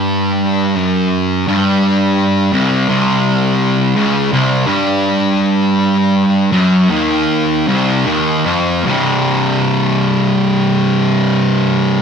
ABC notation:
X:1
M:4/4
L:1/8
Q:1/4=81
K:Cphr
V:1 name="Distorted electric guitar" clef=bass
[G,,G,]2 [^F,,^F,]2 [G,,G,]3 [C,,C,] | [C,,C,]3 [D,,D,] [C,,C,] [G,,G,]3- | [G,,G,]2 [^F,,^F,] [E,,E,]2 [C,,C,] [E,,E,] [=F,,=F,] | [C,,G,,C,]8 |]